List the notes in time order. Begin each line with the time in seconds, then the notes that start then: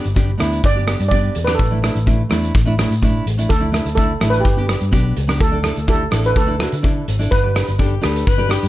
0.04 G1, closed hi-hat
0.14 B3 D4 G4, kick, closed hi-hat
0.37 D2 B3 D4 E4, cross-stick, closed hi-hat
0.52 closed hi-hat
0.64 G1 D5, kick, closed hi-hat
0.75 B3 D4 G4
0.87 B3 D4 G4, cross-stick, closed hi-hat
1.00 G2, closed hi-hat
1.08 B3 D4 G4 D5, kick, closed hi-hat
1.35 E2, closed hi-hat
1.44 B3 D4 G4 B4, cross-stick, closed hi-hat
1.55 A4
1.59 A1, kick, closed hi-hat
1.70 A3 D4 E4
1.82 A3 D4 E4, cross-stick, closed hi-hat
1.95 A1, closed hi-hat
2.06 A3 D4 E4, kick, closed hi-hat
2.29 E2 A3 D4 E4, cross-stick, closed hi-hat
2.43 closed hi-hat
2.55 A1, kick, closed hi-hat
2.65 A3 D4 E4
2.78 A3 D4 E4, cross-stick, closed hi-hat
2.90 A2, closed hi-hat
3.02 A3 D4 E4, kick, closed hi-hat
3.26 A1, closed hi-hat
3.38 A3 D4 E4, closed hi-hat
3.49 D2 A4, kick, closed hi-hat
3.60 A3 D4 E4
3.71 A3 D4 E4, cross-stick, closed hi-hat
3.85 D2, closed hi-hat
3.95 A3 D4 E4 A4, kick, closed hi-hat
4.20 A1 A3 D4 E4, cross-stick, closed hi-hat
4.30 B4, closed hi-hat
4.40 G4
4.45 kick, closed hi-hat
4.57 B3 D4 G4
4.68 B3 D4 G4, cross-stick, closed hi-hat
4.81 G2, closed hi-hat
4.91 B1 B3 D4 G4, kick, closed hi-hat
5.17 C#2, closed hi-hat
5.27 B3 D4 G4, cross-stick, closed hi-hat
5.40 D2 A4, kick, closed hi-hat
5.51 D4 E4 A4
5.63 D4 E4 A4, cross-stick, closed hi-hat
5.76 D2, closed hi-hat
5.87 D4 E4 G4 A4, kick, closed hi-hat
6.11 A1 D4 E4 A4, cross-stick, closed hi-hat
6.24 B4, closed hi-hat
6.36 D2 A4, kick, closed hi-hat
6.47 D4 E4 A4
6.59 D4 E4 F#4, cross-stick, closed hi-hat
6.72 D3, closed hi-hat
6.83 D4 E4 A4, kick, closed hi-hat
7.08 G#1, closed hi-hat
7.19 D4 E4 A4, closed hi-hat
7.31 G1 B4, kick, closed hi-hat
7.42 D4 G4 B4
7.55 D4 G4 B4, cross-stick, closed hi-hat
7.68 G1, closed hi-hat
7.78 D4 G4 A4, kick, closed hi-hat
8.01 D2 D4 G4 A4 B4, cross-stick, closed hi-hat
8.16 closed hi-hat
8.27 G1 B4, kick, closed hi-hat
8.38 D4 G4 B4
8.49 D4 G4 B4, cross-stick, closed hi-hat
8.63 G2, closed hi-hat